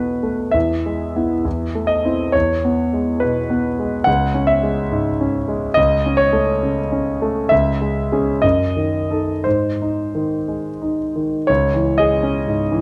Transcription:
Already playing: E2 B2 A3 B3 B4 C#5
0.23 A3
0.51 E2 E5
0.86 G#3
1.16 B3 E4
1.45 E2
1.75 A3
1.87 D#5
2.05 C4 E4
2.32 E2 C#5
2.65 B3
2.93 G#3
3.20 B2 B4
3.50 B3
3.79 G#3
4.04 C#2 F#5
4.34 C#4
4.47 E5
4.63 G#3
4.91 G#2
5.21 C#4
5.48 G#3
5.74 C#2 D#5
6.06 C#4
6.17 C#5
6.33 A3
6.63 C#3
6.92 C#4
7.22 A3
7.49 C#2 E5
7.81 G#3
8.12 C#4 G#4
8.42 F#2 D#5
8.76 D#3
9.10 D#4 A4
9.44 G#2 C5
9.82 D#4
10.15 D#3
10.48 G#3
10.82 D#4
11.16 D#3
11.47 C#2 C#5
11.74 E3
11.98 G#4 D#5
12.23 C#4
12.48 G#2
12.72 E3

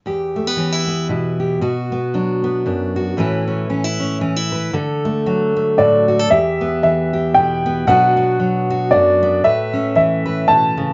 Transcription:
0.06 E2 G4
0.36 A3
0.47 B3
0.57 E3 C#4
0.72 E4
0.88 B3
1.09 B2 E4
1.40 G4
1.61 B2 F#4
1.92 B3
2.14 F#3 D4
2.44 B3
2.66 F#2 D4
2.96 F#4
3.17 A2 E3 C#4 E4 B4
3.48 C#4
3.70 E3 C#4
3.84 E4
4.00 C#4
4.21 E3 C#4
4.36 E4
4.52 B4
4.73 D3 A4
5.05 A3
5.26 F#3 F#4
5.56 A3
5.78 A2 F#4 D5
6.08 F#4
6.19 A4
6.30 E2 G4 E5
6.61 B3
6.83 E3 E5
7.13 G4
7.34 B2 E4 G5
7.66 B3
7.87 B2 F#3 B3 D4 F#4 F#5
8.17 B3
8.40 F#3
8.70 F#4
8.91 F#2 D4 D5
9.23 B3
9.44 A2 B4 E5
9.73 C#4
9.95 E3 E5
10.26 B4
10.48 B2 A5
10.77 C#3

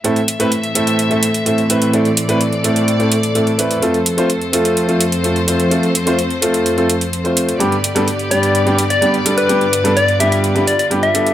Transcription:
0.04 A2 E3 A3 C4 E4 A4 E5, closed hi-hat
0.16 closed hi-hat
0.28 closed hi-hat
0.39 A2 A3 C4 E4 B4, closed hi-hat
0.52 closed hi-hat
0.64 closed hi-hat
0.75 A2 A3 C4 E4 A4, closed hi-hat
0.87 closed hi-hat
0.99 closed hi-hat
1.10 A2 A3 C4 E4 A4, closed hi-hat
1.23 closed hi-hat
1.34 closed hi-hat
1.46 A2 A3 C4 E4 A4, closed hi-hat
1.58 closed hi-hat
1.69 A2 A3 C4 E4 B4, closed hi-hat
1.82 closed hi-hat
1.93 A2 A3 C4 E4 A4 D5, closed hi-hat
2.05 closed hi-hat
2.17 closed hi-hat
2.28 A2 A3 C4 E4 B4, closed hi-hat
2.41 closed hi-hat
2.53 closed hi-hat
2.64 A2 A3 C4 E4 A4, closed hi-hat
2.76 closed hi-hat
2.88 closed hi-hat
2.99 A2 A3 C4 E4 A4, closed hi-hat
3.12 closed hi-hat
3.23 closed hi-hat
3.35 A2 A3 C4 E4 A4, closed hi-hat
3.47 closed hi-hat
3.58 A3 C4 E4 B4, closed hi-hat
3.71 closed hi-hat
3.82 F2 F3 A3 C4 F4 A4 C5, closed hi-hat
3.94 closed hi-hat
4.06 closed hi-hat
4.17 A3 C4 F4 C5, closed hi-hat
4.30 closed hi-hat
4.41 closed hi-hat
4.53 A3 C4 F4 A4, closed hi-hat
4.65 closed hi-hat
4.77 closed hi-hat
4.88 A3 C4 F4 A4, closed hi-hat
5.01 closed hi-hat
5.12 closed hi-hat
5.24 A3 C4 F4 A4, closed hi-hat
5.36 closed hi-hat
5.47 A3 C4 F4 C5, closed hi-hat
5.60 closed hi-hat
5.71 A3 C4 F4 A4, closed hi-hat
5.83 closed hi-hat
5.95 closed hi-hat
6.06 A3 C4 F4 C5, closed hi-hat
6.19 closed hi-hat
6.30 closed hi-hat
6.42 A3 C4 F4 A4, closed hi-hat
6.54 closed hi-hat
6.66 closed hi-hat
6.77 A3 C4 F4 A4, closed hi-hat
6.90 closed hi-hat
7.01 closed hi-hat
7.13 closed hi-hat
7.24 A3 C4 F4 C5, closed hi-hat
7.37 closed hi-hat
7.49 closed hi-hat
7.60 G2 D3 G3 B3 D4 G4 D5, closed hi-hat
7.72 closed hi-hat
7.84 closed hi-hat
7.95 G2 G3 B3 D4 A4, closed hi-hat
8.08 closed hi-hat
8.19 closed hi-hat
8.31 G2 G3 B3 D4 G4 D5, closed hi-hat
8.43 closed hi-hat
8.55 closed hi-hat
8.66 G2 G3 B3 D4 G4, closed hi-hat
8.78 closed hi-hat
8.90 D5, closed hi-hat
9.02 G2 G3 B3 D4 G4, closed hi-hat
9.14 closed hi-hat
9.25 G2 G3 B3 D4 A4, closed hi-hat
9.38 B4, closed hi-hat
9.49 G2 G3 B3 D4 F4 G4, closed hi-hat
9.61 closed hi-hat
9.73 closed hi-hat
9.84 G2 G3 B3 D4 A4, closed hi-hat
9.97 D5, closed hi-hat
10.08 closed hi-hat
10.20 G2 G3 B3 D4 G4 E5, closed hi-hat
10.32 E5, closed hi-hat
10.44 closed hi-hat
10.55 G2 G3 B3 D4 G4, closed hi-hat
10.67 D5, closed hi-hat
10.79 D5, closed hi-hat
10.91 G2 G3 B3 D4 G4, closed hi-hat
11.03 E5, closed hi-hat
11.14 G3 B3 D4 A4, closed hi-hat
11.27 closed hi-hat

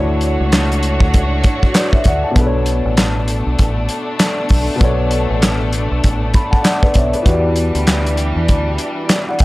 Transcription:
Already playing: D2 A3 D4 E4 F#4 C#5
0.21 closed hi-hat
0.41 C#2
0.52 snare, clap, closed hi-hat
0.72 closed hi-hat
0.83 closed hi-hat
1.00 D2, kick
1.14 C#2, kick, closed hi-hat
1.44 kick, closed hi-hat
1.63 kick
1.74 B4 D5, snare, clap, closed hi-hat
1.92 C#5 E5, kick
2.04 D2 F#5, kick, closed hi-hat
2.08 D5
2.24 F#5 A5
2.31 B2 B3
2.36 B1 A3 B3 D4 A4, kick, closed hi-hat
2.40 B4
2.47 C#5
2.66 closed hi-hat
2.85 A1
2.97 snare, clap, closed hi-hat
3.28 closed hi-hat
3.47 B1
3.59 A1, kick, closed hi-hat
3.89 closed hi-hat
4.19 snare, clap, closed hi-hat
4.49 B1, kick, open hi-hat
4.75 B2 B3
4.80 B1 D4 A4, kick, closed hi-hat
4.84 C#5
5.11 closed hi-hat
5.30 A1
5.42 snare, clap, closed hi-hat
5.73 closed hi-hat
5.92 B1
6.04 A1, kick, closed hi-hat
6.34 B5, kick, closed hi-hat
6.51 F#5 A5, kick
6.62 D5 F#5, snare, clap, closed hi-hat
6.83 B4 D5, kick
6.94 B1 C#5 E5, kick, closed hi-hat
7.13 B4 D5, closed hi-hat
7.22 E2 E3 G3 B3 D4, kick, closed hi-hat
7.27 F#4 G4
7.31 D5
7.56 closed hi-hat
7.75 D2, closed hi-hat
7.87 snare, clap, closed hi-hat
8.06 closed hi-hat
8.17 closed hi-hat
8.36 E2
8.48 D2, kick, closed hi-hat
8.78 closed hi-hat
9.09 snare, clap, closed hi-hat
9.29 D5 F#5
9.39 E2 E5 G5, kick, closed hi-hat

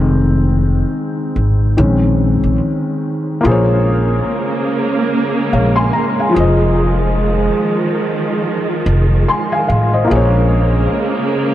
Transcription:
Already playing: F1 D#3 G#3 C4
1.36 G#1
1.77 A#1 D#3 G#3 C4 C#4
2.43 A#1
3.41 A#1 C#3 G#3 A#3 F4
3.46 G#4 C5
3.51 C#5
5.53 A#1 C#5 F5
5.76 G#5 C6
5.93 A#5
6.20 F5 G#5
6.29 F3 F4
6.34 F1 D#3 F3 G#4 C5
6.40 D#5
8.86 F1
9.28 G#5 C6
9.52 F5 G#5
9.68 A1 F5
9.93 C5 D#5
10.04 A#3 F4
10.10 A#1 C#3 G#3 A#3 G#4 C5
10.15 C#5

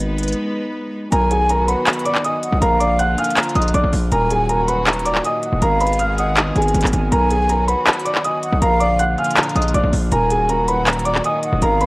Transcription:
Already playing: G#1 G#3 B3 D#4 B4
0.18 closed hi-hat
0.23 closed hi-hat
0.28 closed hi-hat
0.32 closed hi-hat
1.12 B1 D#3 F#3 B3 F#4 A#4 G#5 A#5, closed hi-hat
1.31 G#4 G#5, closed hi-hat
1.49 A#4 A#5, closed hi-hat
1.68 B4 F#5 B5, closed hi-hat
1.87 B5, clap, closed hi-hat
1.93 closed hi-hat
1.99 closed hi-hat
2.05 D5 D6, closed hi-hat
2.15 clap
2.24 D#5 G#5 D#6, closed hi-hat
2.43 F#5, closed hi-hat
2.52 B1
2.62 A#1 D3 F3 A#3 F4 A#4 F5 A#5, closed hi-hat
2.80 D5 D6, closed hi-hat
2.99 F#5 F#6, closed hi-hat
3.18 F5 G#5 F6, closed hi-hat
3.24 closed hi-hat
3.31 closed hi-hat
3.37 A#5, clap, closed hi-hat
3.43 closed hi-hat
3.49 closed hi-hat
3.55 A#1 D#5 D#6, closed hi-hat
3.62 closed hi-hat
3.68 closed hi-hat
3.74 A#1 D5 D6, closed hi-hat
3.84 A#1
3.93 A#1, open hi-hat
4.12 D#1 A#2 D#3 F#3 F#4 A#4 G#5 A#5, closed hi-hat
4.30 G#4 G#5, closed hi-hat
4.49 A#4 A#5, closed hi-hat
4.68 B4 F#5 B5, closed hi-hat
4.87 A#5, clap, closed hi-hat
4.93 closed hi-hat
4.99 closed hi-hat
5.05 D5 D6, closed hi-hat
5.15 clap
5.24 D#5 G#5 D#6, closed hi-hat
5.43 F#5, closed hi-hat
5.53 D#1
5.62 G#1 G#3 B3 G#4 A#4 F5 A#5, closed hi-hat
5.81 B4 B5, closed hi-hat
5.87 closed hi-hat
5.93 closed hi-hat
5.99 F5 F6, closed hi-hat
6.18 D#5 F#5 D#6, closed hi-hat
6.37 clap, closed hi-hat
6.56 G#1 G#4 G#5, closed hi-hat
6.62 closed hi-hat
6.68 closed hi-hat
6.74 G#1, closed hi-hat
6.81 G#1, clap, closed hi-hat
6.87 closed hi-hat
6.93 G#1 G#5, closed hi-hat
7.12 B1 F#3 F#4 A#4 G#5 A#5, closed hi-hat
7.31 G#4 G#5, closed hi-hat
7.49 A#4 A#5, closed hi-hat
7.68 B4 F#5 B5, closed hi-hat
7.87 B5, clap, closed hi-hat
7.93 closed hi-hat
7.99 closed hi-hat
8.05 D5 D6, closed hi-hat
8.15 clap
8.24 D#5 G#5 D#6, closed hi-hat
8.43 F#5, closed hi-hat
8.53 B1
8.62 A#1 A#2 D3 F3 F4 A#4 F5 A#5, closed hi-hat
8.80 D5 D6, closed hi-hat
8.99 F#5 F#6, closed hi-hat
9.18 F5 G#5 F6, closed hi-hat
9.24 closed hi-hat
9.31 closed hi-hat
9.37 A#5, clap, closed hi-hat
9.43 closed hi-hat
9.49 closed hi-hat
9.56 A#1 D#5 D#6, closed hi-hat
9.62 closed hi-hat
9.68 closed hi-hat
9.74 A#1 D5 D6, closed hi-hat
9.84 A#1
9.93 A#1, open hi-hat
10.12 D#1 D#3 F#3 F#4 A#4 G#5 A#5, closed hi-hat
10.30 G#4 G#5, closed hi-hat
10.49 A#4 A#5, closed hi-hat
10.68 B4 F#5 B5, closed hi-hat
10.87 A#5, clap, closed hi-hat
10.93 closed hi-hat
10.99 closed hi-hat
11.05 D5 D6, closed hi-hat
11.15 clap
11.24 D#5 G#5 D#6, closed hi-hat
11.43 F#5, closed hi-hat
11.52 D#1
11.62 G#1 G#3 B3 G#4 A#4 F5 A#5, closed hi-hat
11.81 B4 B5, closed hi-hat

